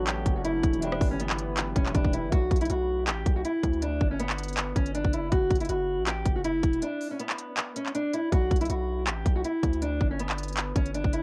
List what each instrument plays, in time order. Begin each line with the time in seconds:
Already playing: synth keys F#3 F#4 A4 C#5, ambient pad F#3 A3 C#4
0.00 808-style bass A1
0.07 steel-string acoustic guitar G4, clap, closed hi-hat
0.26 808-style bass F#1, kick, closed hi-hat
0.36 steel-string acoustic guitar F#4
0.45 steel-string acoustic guitar E4, closed hi-hat
0.63 808-style bass E1, kick, closed hi-hat
0.73 closed hi-hat
0.78 synth keys E3 E4
0.82 ambient pad E3 E4 G4 B4, steel-string acoustic guitar D4, synth keys G4, closed hi-hat
0.87 synth keys B4
0.92 cross-stick
1.01 808-style bass G1, kick, open hi-hat
1.11 steel-string acoustic guitar C#4
1.20 steel-string acoustic guitar B3, closed hi-hat
1.30 clap
1.38 closed hi-hat
1.57 clap, closed hi-hat
1.76 808-style bass E1, steel-string acoustic guitar C#4, kick, closed hi-hat
1.86 clap
1.92 808-style bass E1, synth keys E3 E4 G4, steel-string acoustic guitar D4, kick, closed hi-hat
1.96 synth keys B4
2.05 808-style bass E1, kick
2.13 steel-string acoustic guitar E4, closed hi-hat
2.23 808-style bass G1
2.32 808-style bass B1, steel-string acoustic guitar F#4, kick, closed hi-hat
2.51 808-style bass B1, kick, closed hi-hat
2.56 closed hi-hat
2.61 steel-string acoustic guitar E4, closed hi-hat
2.65 closed hi-hat
2.70 808-style bass B1, steel-string acoustic guitar F#4, closed hi-hat
3.07 808-style bass A1, steel-string acoustic guitar G4, clap, closed hi-hat
3.26 808-style bass B1, kick, closed hi-hat
3.36 steel-string acoustic guitar F#4
3.45 steel-string acoustic guitar E4, closed hi-hat
3.63 808-style bass D2, kick, closed hi-hat
3.73 closed hi-hat
3.82 steel-string acoustic guitar D4, closed hi-hat
4.01 808-style bass G1, kick
4.11 steel-string acoustic guitar C#4
4.20 steel-string acoustic guitar B3, closed hi-hat
4.30 clap
4.38 closed hi-hat
4.43 closed hi-hat
4.48 closed hi-hat
4.53 closed hi-hat
4.57 clap, closed hi-hat
4.76 808-style bass G1, steel-string acoustic guitar C#4, kick, closed hi-hat
4.86 closed hi-hat
4.95 steel-string acoustic guitar D4, closed hi-hat
5.05 808-style bass F#1, kick
5.13 steel-string acoustic guitar E4, closed hi-hat
5.32 808-style bass F#1, steel-string acoustic guitar F#4, kick, closed hi-hat
5.51 808-style bass F#1, kick, closed hi-hat
5.56 closed hi-hat
5.61 steel-string acoustic guitar E4, closed hi-hat
5.65 closed hi-hat
5.69 808-style bass F#1, steel-string acoustic guitar F#4, closed hi-hat
5.98 808-style bass A1
6.07 steel-string acoustic guitar G4, clap, closed hi-hat
6.26 808-style bass F#1, kick, closed hi-hat
6.36 steel-string acoustic guitar F#4
6.45 steel-string acoustic guitar E4, closed hi-hat
6.63 808-style bass E1, kick, closed hi-hat
6.73 closed hi-hat
6.82 steel-string acoustic guitar D4, closed hi-hat
7.01 open hi-hat
7.11 steel-string acoustic guitar C#4
7.19 steel-string acoustic guitar B3, closed hi-hat
7.29 clap
7.38 closed hi-hat
7.57 clap, closed hi-hat
7.76 steel-string acoustic guitar C#4, closed hi-hat
7.86 clap
7.95 steel-string acoustic guitar D4, closed hi-hat
8.13 steel-string acoustic guitar E4, closed hi-hat
8.32 808-style bass B1, steel-string acoustic guitar F#4, kick, closed hi-hat
8.51 808-style bass B1, kick, closed hi-hat
8.56 closed hi-hat
8.61 steel-string acoustic guitar E4, closed hi-hat
8.65 closed hi-hat
8.70 808-style bass B1, steel-string acoustic guitar F#4, closed hi-hat
9.07 808-style bass A1, steel-string acoustic guitar G4, clap, closed hi-hat
9.26 808-style bass B1, kick, closed hi-hat
9.36 steel-string acoustic guitar F#4
9.45 steel-string acoustic guitar E4, closed hi-hat
9.63 808-style bass D2, kick, closed hi-hat
9.73 closed hi-hat
9.82 steel-string acoustic guitar D4, closed hi-hat
10.01 808-style bass G1, kick
10.11 steel-string acoustic guitar C#4
10.20 steel-string acoustic guitar B3, closed hi-hat
10.29 clap
10.38 closed hi-hat
10.43 closed hi-hat
10.48 closed hi-hat
10.53 closed hi-hat
10.57 clap, closed hi-hat
10.76 808-style bass G1, steel-string acoustic guitar C#4, kick, closed hi-hat
10.86 closed hi-hat
10.95 steel-string acoustic guitar D4, closed hi-hat
11.05 808-style bass F#1, kick
11.13 steel-string acoustic guitar E4, closed hi-hat